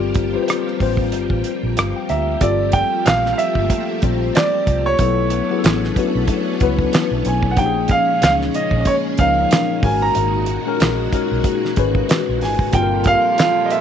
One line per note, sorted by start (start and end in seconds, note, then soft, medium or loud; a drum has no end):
0.00 0.35 G1 loud
0.00 2.37 F3 medium
0.00 0.34 G3 loud
0.00 2.37 G3 medium
0.00 2.37 A#3 medium
0.00 0.35 C4 loud
0.00 0.35 F4 loud
0.00 2.37 G4 medium
0.00 2.42 G4 loud
0.00 2.43 A4 medium
0.00 2.43 A#4 medium
0.00 0.43 C5 loud
0.14 kick loud
0.14 closed hi-hat medium
0.34 0.78 G3 medium
0.34 0.78 C4 medium
0.34 0.78 F4 medium
0.34 0.40 B4 medium
0.43 0.81 C5 medium
0.48 cross-stick medium
0.48 closed hi-hat medium
0.68 cross-stick soft
0.80 1.13 A1 medium
0.80 2.03 G3 medium
0.80 2.04 C4 medium
0.80 2.04 F4 medium
0.80 2.04 C5 medium
0.80 kick medium
0.80 open hi-hat soft
0.97 kick medium
1.12 1.27 G1 medium
1.12 closed hi-hat medium
1.30 1.41 A1 medium
1.30 kick medium
1.44 closed hi-hat medium
1.63 1.74 A#1 medium
1.77 1.92 G1 medium
1.77 1.94 F5 medium
1.77 cross-stick loud
1.77 closed hi-hat medium
1.96 2.09 G5 medium
2.09 2.35 D2 medium
2.09 2.42 E5 medium
2.09 2.39 A#5 medium
2.09 cross-stick soft
2.09 closed hi-hat medium
2.41 2.81 G1 loud
2.41 4.97 F3 medium
2.41 3.64 G3 medium
2.41 4.97 A3 medium
2.41 4.97 A#3 medium
2.41 3.65 C4 medium
2.41 3.65 F4 medium
2.41 4.97 G4 medium
2.41 3.65 A4 loud
2.41 2.75 D5 medium
2.41 kick loud
2.41 closed hi-hat medium
2.72 3.06 G5 loud
2.72 kick medium
2.72 closed hi-hat medium
3.06 3.32 A#1 medium
3.06 3.31 F5 loud
3.06 snare loud
3.06 clap loud
3.06 closed hi-hat medium
3.26 snare soft
3.33 3.38 F5 medium
3.38 3.98 E5 medium
3.38 closed hi-hat medium
3.55 3.67 G1 medium
3.55 kick medium
3.70 kick loud
3.70 closed hi-hat medium
4.02 4.29 A#1 medium
4.02 4.95 G3 medium
4.02 4.95 C4 medium
4.02 4.96 F4 medium
4.02 4.96 C5 medium
4.02 kick loud
4.02 closed hi-hat medium
4.35 4.87 D5 loud
4.35 snare loud
4.35 clap medium
4.35 closed hi-hat medium
4.67 4.93 C2 medium
4.67 kick medium
4.67 closed hi-hat medium
4.86 6.75 C#5 loud
4.99 5.39 B1 loud
4.99 5.47 F#3 medium
4.99 7.55 A3 medium
4.99 7.55 B3 medium
4.99 5.47 B3 medium
4.99 7.55 C#4 medium
4.99 7.55 D4 medium
4.99 5.48 E4 medium
4.99 5.48 A4 medium
4.99 kick loud
4.99 closed hi-hat medium
5.30 closed hi-hat medium
5.50 5.94 F#3 medium
5.50 5.94 B3 medium
5.50 5.95 E4 medium
5.50 5.56 G#4 medium
5.59 5.98 A4 medium
5.64 5.90 A1 loud
5.64 snare loud
5.64 clap loud
5.64 closed hi-hat medium
5.84 snare soft
5.96 6.58 F#3 medium
5.96 6.58 B3 medium
5.96 6.59 E4 medium
5.96 6.59 F#4 medium
5.96 kick loud
5.96 closed hi-hat medium
6.15 6.26 B1 medium
6.28 kick medium
6.28 closed hi-hat medium
6.60 6.86 C#2 medium
6.60 7.53 F#3 medium
6.60 7.54 B3 medium
6.60 7.54 E4 medium
6.60 7.54 B4 loud
6.60 kick loud
6.60 closed hi-hat medium
6.79 kick medium
6.93 snare loud
6.93 clap medium
6.93 closed hi-hat medium
7.11 7.22 B1 medium
7.25 7.58 B1 loud
7.25 7.53 G#5 medium
7.25 closed hi-hat medium
7.43 kick loud
7.51 7.57 F#5 medium
7.57 7.97 A#1 loud
7.57 13.81 A#2 medium
7.57 9.81 C#3 medium
7.57 8.81 F3 medium
7.57 9.81 G#3 medium
7.57 8.81 A#3 medium
7.57 9.81 C#4 medium
7.57 8.81 D#4 medium
7.57 7.66 G4 medium
7.57 7.91 G5 medium
7.57 kick loud
7.57 closed hi-hat medium
7.66 8.85 G#4 loud
7.88 8.22 F5 loud
7.88 kick loud
7.88 closed hi-hat medium
8.22 8.48 C#2 medium
8.22 8.30 F5 loud
8.22 snare loud
8.22 clap loud
8.22 closed hi-hat medium
8.41 snare soft
8.54 8.79 D#5 medium
8.54 closed hi-hat medium
8.71 8.83 A#1 medium
8.71 kick medium
8.80 8.86 D#5 medium
8.85 8.94 C#5 medium
8.85 kick medium
8.85 closed hi-hat medium
9.17 9.44 C#2 medium
9.17 9.83 F3 medium
9.17 9.84 A#3 medium
9.17 9.84 D#4 medium
9.17 9.84 A#4 medium
9.17 9.79 F5 loud
9.17 kick loud
9.17 closed hi-hat medium
9.51 snare loud
9.51 clap medium
9.51 closed hi-hat medium
9.83 10.09 G#1 medium
9.83 12.70 D#3 medium
9.83 12.70 G#3 medium
9.83 10.61 G#3 medium
9.83 10.61 C#4 medium
9.83 12.70 F#4 medium
9.83 10.62 F#4 medium
9.83 10.62 A#4 medium
9.83 10.02 G#5 medium
9.83 kick loud
9.83 open hi-hat soft
10.02 12.49 A#5 medium
10.15 10.56 G#1 loud
10.15 closed hi-hat medium
10.46 closed hi-hat medium
10.66 11.10 G#3 medium
10.66 11.10 C#4 medium
10.66 11.11 F#4 medium
10.66 11.11 A#4 medium
10.80 11.06 A#1 medium
10.80 snare loud
10.80 clap medium
10.80 closed hi-hat medium
11.12 11.74 G#3 medium
11.12 11.74 C#4 medium
11.12 11.75 F#4 medium
11.12 11.75 A#4 medium
11.12 kick medium
11.12 closed hi-hat medium
11.31 11.42 B1 medium
11.44 kick loud
11.44 closed hi-hat medium
11.65 snare soft
11.76 12.03 G#1 loud
11.76 12.69 G#3 medium
11.76 12.70 C#4 medium
11.76 12.70 F#4 medium
11.76 12.70 B4 loud
11.76 kick medium
11.76 closed hi-hat medium
11.95 kick medium
12.09 snare loud
12.09 clap loud
12.09 closed hi-hat medium
12.29 12.43 A#1 medium
12.41 12.68 G#1 medium
12.41 12.75 G#5 medium
12.41 snare soft
12.41 open hi-hat soft
12.59 kick medium
12.73 13.14 G1 loud
12.73 13.81 D3 medium
12.73 13.81 F3 medium
12.73 13.81 G3 medium
12.73 13.81 A#3 medium
12.73 13.81 C4 medium
12.73 13.81 F4 medium
12.73 13.81 G4 medium
12.73 12.82 A4 medium
12.73 13.07 G5 medium
12.73 kick loud
12.73 closed hi-hat medium
12.82 13.81 A#4 loud
13.04 13.66 F5 loud
13.04 kick loud
13.04 closed hi-hat medium
13.38 snare loud
13.38 clap medium
13.38 closed hi-hat medium
13.65 13.71 D#5 medium
13.70 13.81 E5 medium
13.70 closed hi-hat medium